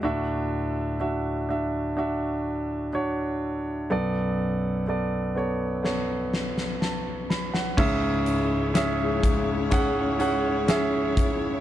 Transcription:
<<
  \new Staff \with { instrumentName = "Grand piano" } { \time 4/4 \key cis \phrygian \tempo 4 = 62 << { r1 | r2. a''8 b''16 fis''16~ | fis''16 r2. r8. | } \\ { <d' fis' e''>4 <d' fis' e''>8 <d' fis' e''>8 <d' fis' e''>4 <d' fis' cis''>4 | <b a' d''>4 <b a' d''>8 <b a' cis''>8 <b a' cis''>4 r4 | <cis' gis' e''>4 <cis' gis' e''>4 <cis' gis' fis''>8 <cis' gis' fis''>8 <cis' gis' e''>4 | } >> }
  \new Staff \with { instrumentName = "Grand piano" } { \clef bass \time 4/4 \key cis \phrygian <d, a,>1 | <b,, fis,>1 | <cis, gis,>1 | }
  \new Staff \with { instrumentName = "String section" } { \time 4/4 \key cis \phrygian r1 | r1 | <gis cis' e' cis''>1 | }
  \new DrumStaff \with { instrumentName = "Drums" } \drummode { \time 4/4 r4 r4 r4 r4 | r4 r4 sn8 sn16 sn16 sn8 sn16 sn16 | <cymc bd>8 hh8 <hh sn>8 <hh bd>8 <hh bd>8 hh8 <hh sn>8 <hh bd>8 | }
>>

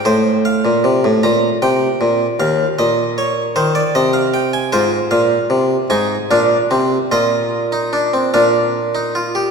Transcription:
<<
  \new Staff \with { instrumentName = "Harpsichord" } { \time 6/8 \key f \dorian \tempo 4. = 51 << { c''8 f''4 bes''8 g''4 | f''8 ees''8 des''8 c''16 d''16 ees''16 f''16 g''16 aes''16 | \key bes \mixolydian c''8 f''4 aes''8 f''4 | ees''4. f''4. | } \\ { r2. | r2. | f'4. ees'8 d'8 c'8 | f'8. ees'16 d'16 c'16 d'8. ees'16 f'16 g'16 | } >> }
  \new Staff \with { instrumentName = "Harpsichord" } { \clef bass \time 6/8 \key f \dorian a,8. bes,16 c16 a,16 bes,8 c8 bes,8 | ees,8 bes,4 ees8 c4 | \key bes \mixolydian aes,8 bes,8 c8 aes,8 bes,8 c8 | bes,4. bes,4. | }
>>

